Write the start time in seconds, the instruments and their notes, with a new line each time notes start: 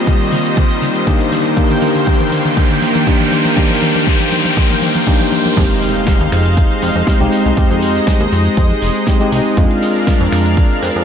Already playing: analog synth pad D#3 G3 C5 D#5, tine electric piano A#3 C4 F4 G4, riser
0.07 kick, closed hi-hat, mid tom, shaker
0.21 closed hi-hat, shaker
0.32 open hi-hat, mid tom
0.46 closed hi-hat, shaker
0.57 kick, closed hi-hat, mid tom, shaker
0.71 closed hi-hat, shaker
0.82 open hi-hat, mid tom
0.95 closed hi-hat, shaker
1.07 tine electric piano A#3 D4 D#4 G4, kick, closed hi-hat, mid tom, shaker
1.20 closed hi-hat, shaker
1.32 analog synth pad A#3 G5, open hi-hat, mid tom
1.46 closed hi-hat, shaker
1.56 tine electric piano A#3 D4 D#4 G4, kick, closed hi-hat, mid tom, shaker
1.71 closed hi-hat, mid tom, shaker
1.82 open hi-hat, mid tom
1.96 closed hi-hat, mid tom, shaker
2.07 kick, closed hi-hat, mid tom, shaker
2.21 closed hi-hat, mid tom, shaker
2.32 open hi-hat, mid tom
2.45 closed hi-hat, mid tom, shaker
2.57 kick, closed hi-hat, mid tom, shaker
2.71 closed hi-hat, mid tom, shaker
2.82 open hi-hat, mid tom
2.96 closed hi-hat, mid tom, shaker
3.07 tine electric piano A#3 D4 D#4 G4, kick, closed hi-hat, mid tom, shaker
3.20 closed hi-hat, mid tom, shaker
3.32 open hi-hat, mid tom
3.45 closed hi-hat, mid tom, shaker
3.56 tine electric piano A#3 D4 D#4 G4, kick, closed hi-hat, mid tom, shaker
3.71 closed hi-hat, mid tom, shaker
3.83 open hi-hat, mid tom
3.96 closed hi-hat, mid tom, shaker
4.07 kick, closed hi-hat, mid tom, shaker
4.20 closed hi-hat, mid tom, shaker
4.32 open hi-hat, mid tom
4.45 closed hi-hat, mid tom, shaker
4.57 kick, closed hi-hat, mid tom, shaker
4.71 closed hi-hat, mid tom, shaker
4.82 open hi-hat, mid tom
4.95 closed hi-hat, mid tom, shaker
5.07 tine electric piano A#3 D4 D#4 G4, kick, closed hi-hat, mid tom, shaker
5.21 closed hi-hat, mid tom, shaker
5.32 open hi-hat, mid tom
5.46 closed hi-hat, mid tom, shaker
5.56 analog synth bass F2, tine electric piano G#3 C4 D#4 G4, analog synth pad G#3 D#4 C5 F5, kick, closed hi-hat, crash, impact, shaker
5.70 closed hi-hat, shaker
5.82 open hi-hat, shaker
5.95 shaker
6.07 kick, snare, closed hi-hat, shaker
6.20 analog synth bass D#2, closed hi-hat, shaker
6.32 analog synth bass F2, finger snap, open hi-hat, shaker
6.46 closed hi-hat, shaker
6.57 kick, closed hi-hat, shaker
6.70 closed hi-hat, shaker
6.82 analog synth bass F2, open hi-hat, shaker
6.95 analog synth bass F2, shaker
7.07 tine electric piano G#3 C4 D#4 G4, kick, snare, closed hi-hat, shaker
7.20 analog synth bass C2, tine electric piano G#3 C4 D#4 G4, closed hi-hat, shaker
7.32 open hi-hat, shaker
7.46 analog synth bass C2, shaker
7.56 analog synth bass F2, tine electric piano G#3 C4 D#4 G4, analog synth pad D#5, kick, closed hi-hat, shaker
7.71 analog synth bass F2, closed hi-hat, shaker
7.82 open hi-hat, shaker
7.96 shaker
8.07 kick, snare, closed hi-hat, shaker
8.20 analog synth bass D#2, closed hi-hat, shaker
8.32 analog synth bass F2, open hi-hat, shaker
8.45 closed hi-hat, shaker
8.57 analog synth bass F2, kick, closed hi-hat, shaker
8.70 closed hi-hat, shaker
8.82 analog synth bass F1, open hi-hat, shaker
8.95 shaker
9.07 tine electric piano G#3 C4 D#4 G4, kick, snare, closed hi-hat, shaker
9.20 tine electric piano G#3 C4 D#4 G4, closed hi-hat, shaker
9.32 analog synth bass C2, open hi-hat, shaker
9.45 shaker
9.57 analog synth bass F2, tine electric piano G#3 C4 D4 F4, analog synth pad D4 A#4 F5, kick, closed hi-hat, shaker
9.71 closed hi-hat, shaker
9.83 open hi-hat, shaker
9.95 shaker
10.07 kick, snare, closed hi-hat, shaker
10.21 analog synth bass F2, closed hi-hat, shaker
10.32 analog synth bass F2, finger snap, open hi-hat, shaker
10.46 closed hi-hat, shaker
10.57 kick, closed hi-hat, shaker
10.71 closed hi-hat, shaker
10.82 analog synth bass F2, open hi-hat, shaker
10.96 analog synth bass F2, shaker